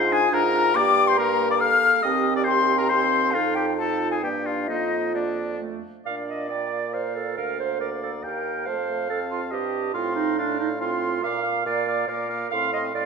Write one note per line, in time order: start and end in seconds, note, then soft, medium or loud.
0.00 0.28 G#2 medium
0.00 0.31 F4 medium
0.00 0.14 C5 medium
0.11 0.20 D4 medium
0.11 0.35 G#4 medium
0.11 0.32 G#5 loud
0.31 0.70 G#2 medium
0.31 0.41 D4 medium
0.31 0.74 F4 medium
0.31 0.78 A#4 medium
0.31 0.77 A#5 loud
0.53 0.63 D4 medium
0.75 1.88 G2 medium
0.75 1.15 A#3 medium
0.75 1.19 G4 medium
0.75 1.08 D5 loud
0.75 1.09 D6 loud
1.07 1.18 C5 medium
1.07 1.19 C6 medium
1.18 2.02 A#3 medium
1.18 1.62 A#4 medium
1.18 1.50 A#4 medium
1.18 1.53 A#5 loud
1.51 1.55 D5 medium
1.51 1.62 D6 loud
1.60 2.04 A4 loud
1.60 2.02 F5 loud
1.60 2.04 F6 loud
2.03 3.36 D#2 medium
2.03 2.45 C4 medium
2.03 3.04 G4 medium
2.03 2.35 D#5 medium
2.03 2.36 D#6 loud
2.36 2.46 D5 medium
2.36 2.42 D6 loud
2.44 2.89 C4 medium
2.44 2.77 C5 medium
2.44 2.80 C6 loud
2.78 2.88 A#4 medium
2.78 2.92 A#5 medium
2.89 3.36 C4 medium
2.89 3.36 C5 medium
2.89 3.33 C6 loud
3.31 4.24 F2 medium
3.31 3.78 D#4 medium
3.31 3.56 F4 medium
3.31 3.74 A4 medium
3.31 3.57 F5 loud
3.55 3.66 G4 medium
3.55 3.77 G5 medium
3.77 4.22 D#4 medium
3.77 4.22 F4 medium
3.77 4.11 A4 medium
3.77 4.10 A5 medium
4.11 4.22 G#4 medium
4.11 4.16 G#5 medium
4.22 4.70 G2 medium
4.22 4.68 A#3 medium
4.22 4.70 D4 medium
4.22 4.47 G4 medium
4.22 4.29 G5 medium
4.45 4.69 F4 medium
4.45 4.69 F5 medium
4.68 5.84 F2 medium
4.68 5.14 A#3 medium
4.68 5.14 D#4 medium
4.68 5.84 F4 medium
4.68 5.17 D#5 medium
5.14 5.61 A#3 medium
5.14 5.60 D4 soft
5.14 5.61 D5 medium
5.60 5.83 A3 soft
6.05 7.40 A#2 soft
6.05 6.51 D4 soft
6.05 6.95 D5 soft
6.05 6.16 F5 medium
6.05 6.52 F5 soft
6.29 6.49 D#5 medium
6.49 7.38 A#3 soft
6.49 6.95 D5 medium
6.49 6.71 G5 soft
6.72 6.78 F5 soft
6.93 7.16 C5 medium
6.93 7.39 D5 soft
6.93 7.37 F5 soft
7.15 7.36 A4 medium
7.37 8.23 D2 soft
7.37 8.64 A#3 soft
7.37 7.58 A#4 medium
7.37 7.80 F5 soft
7.37 8.23 F5 soft
7.60 7.80 C5 medium
7.80 7.90 A#4 medium
7.80 8.25 D5 soft
8.02 8.12 A4 medium
8.23 8.68 D#2 soft
8.23 8.68 A#4 medium
8.23 8.69 F5 soft
8.23 8.67 G5 soft
8.66 9.54 F2 soft
8.66 8.76 A3 soft
8.66 9.09 C5 medium
8.66 9.53 F5 medium
8.66 9.09 A5 soft
8.88 9.11 A3 medium
9.09 9.94 C4 soft
9.09 9.19 A4 medium
9.09 9.97 A5 soft
9.31 9.40 F4 medium
9.51 9.94 G2 soft
9.51 9.93 G4 medium
9.51 9.94 D#5 soft
9.93 11.20 A2 medium
9.93 10.39 C4 medium
9.93 10.14 F4 medium
9.93 10.36 F5 medium
9.93 10.55 C6 medium
10.15 10.40 D#4 medium
10.37 10.81 D4 medium
10.37 10.59 D4 medium
10.37 10.80 F5 medium
10.60 10.69 D#4 medium
10.80 11.21 C4 medium
10.80 11.26 F4 medium
10.80 11.23 F5 medium
10.80 11.22 C6 soft
11.21 11.61 A#2 medium
11.21 11.42 A#3 medium
11.21 11.43 F5 medium
11.21 11.66 F5 loud
11.21 11.44 D6 medium
11.42 11.64 A#3 soft
11.42 11.65 F5 soft
11.42 11.64 D6 soft
11.65 12.04 A#2 medium
11.65 11.86 A#3 soft
11.65 12.10 D5 medium
11.65 11.87 F5 soft
11.65 11.86 D6 medium
11.86 12.07 A#3 medium
11.86 12.07 F5 soft
11.86 12.08 D6 medium
12.07 12.46 A#2 medium
12.07 12.29 A#3 medium
12.07 12.51 A#4 medium
12.07 12.29 F5 soft
12.07 12.30 D6 medium
12.29 12.51 A#3 medium
12.29 12.49 F5 soft
12.29 12.51 D6 soft
12.50 12.90 A2 medium
12.50 12.71 C4 medium
12.50 12.71 F5 soft
12.50 12.73 F5 medium
12.50 12.73 C6 medium
12.72 12.93 C4 soft
12.72 12.83 D#5 medium
12.72 12.93 F5 soft
12.72 12.94 C6 soft
12.94 13.05 A2 medium
12.94 13.05 C4 soft
12.94 13.05 D5 medium
12.94 13.05 F5 soft
12.94 13.05 C6 soft